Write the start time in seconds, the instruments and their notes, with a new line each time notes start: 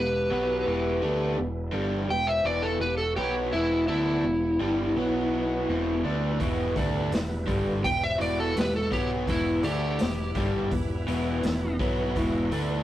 Already playing: picked electric bass E1, overdriven electric guitar E2 B2, tonewheel organ E3 B3 E4, lead electric guitar G4, electric slide guitar B4
0.31 picked electric bass B1, overdriven electric guitar B2 F#3 B3
0.66 picked electric bass E1, overdriven electric guitar E2 B2 E3, tonewheel organ E3 B3
1.02 picked electric bass D2, overdriven electric guitar D3 A3 D4
1.37 picked electric bass E1, overdriven electric guitar E2 B2
1.72 picked electric bass G1, overdriven electric guitar G2 D3 G3
2.08 picked electric bass E1, overdriven electric guitar E2 B2, lead electric guitar E5, electric slide guitar G5
2.27 lead electric guitar C5, electric slide guitar E5
2.43 picked electric bass E1, overdriven electric guitar E2 B2 E3, electric slide guitar D5
2.48 lead electric guitar B4
2.62 electric slide guitar A4
2.67 lead electric guitar F#4
2.80 picked electric bass E1, overdriven electric guitar E2 B2, electric slide guitar B4
2.85 lead electric guitar G4
2.98 electric slide guitar A4
3.02 lead electric guitar F#4
3.16 picked electric bass B1, overdriven electric guitar B2 F#3 B3, electric slide guitar G4
3.21 lead electric guitar E4
3.52 picked electric bass E1, overdriven electric guitar E2 B2 E3, tonewheel organ F3 G#3 C4, lead electric guitar B3, electric slide guitar E4
3.78 tonewheel organ E3 G3 B3
3.88 picked electric bass D2, overdriven electric guitar D3 A3 D4, lead electric guitar B3, electric slide guitar E4
4.24 picked electric bass E1, overdriven electric guitar E2 B2
4.60 picked electric bass G1, overdriven electric guitar G2 D3 G3
4.96 picked electric bass B1, overdriven electric guitar B2 F#3 B3, tonewheel organ B3 F#4 B4
5.68 picked electric bass E1, overdriven electric guitar E2 B2 E3, tonewheel organ G#3 C4 F4 C5
5.93 tonewheel organ G3 B3 E4 B4
6.04 picked electric bass D2, overdriven electric guitar D3 A3 D4
6.40 picked electric bass E1, overdriven electric guitar E2 B2 E3, kick, open hi-hat
6.76 picked electric bass D2, overdriven electric guitar D3 A3 D4, kick, open hi-hat
7.11 picked electric bass E1, overdriven electric guitar E2 B2, snare, open hi-hat
7.47 picked electric bass G1, overdriven electric guitar G2 D3 G3, kick, open hi-hat
7.82 picked electric bass E1, overdriven electric guitar E2 B2, lead electric guitar E5, electric slide guitar G5, kick, open hi-hat
8.03 lead electric guitar C5, electric slide guitar E5
8.19 picked electric bass E1, overdriven electric guitar E2 B2 E3, lead electric guitar B4, electric slide guitar D5, open hi-hat
8.39 lead electric guitar F#4, electric slide guitar A4
8.54 picked electric bass E1, overdriven electric guitar E2 B2, tonewheel organ E3 B3 E4 B4, lead electric guitar G4, electric slide guitar B4, open hi-hat
8.59 snare
8.75 lead electric guitar F#4, electric slide guitar A4
8.91 picked electric bass B1, overdriven electric guitar B2 F#3 B3, lead electric guitar E4, electric slide guitar G4, kick, open hi-hat
9.27 picked electric bass E1, overdriven electric guitar E2 B2 E3, lead electric guitar B3, electric slide guitar E4, kick, open hi-hat
9.63 picked electric bass D2, overdriven electric guitar D3 A3 D4, lead electric guitar E4, electric slide guitar G4, open hi-hat
9.99 picked electric bass E1, overdriven electric guitar E2 B2, snare, open hi-hat
10.35 picked electric bass G1, overdriven electric guitar G2 D3 G3, kick, snare, open hi-hat
10.71 picked electric bass E1, overdriven electric guitar E2 B2, kick, open hi-hat
11.07 picked electric bass E1, overdriven electric guitar E2 B2 E3, open hi-hat
11.42 picked electric bass E1, overdriven electric guitar E2 B2, tonewheel organ E3 B3 E4 B4, snare, open hi-hat
11.79 picked electric bass B1, overdriven electric guitar B2 F#3 B3, kick, open hi-hat
12.16 picked electric bass E1, overdriven electric guitar E2 B2 E3, kick, open hi-hat
12.52 picked electric bass D2, overdriven electric guitar D3 A3 D4, open hi-hat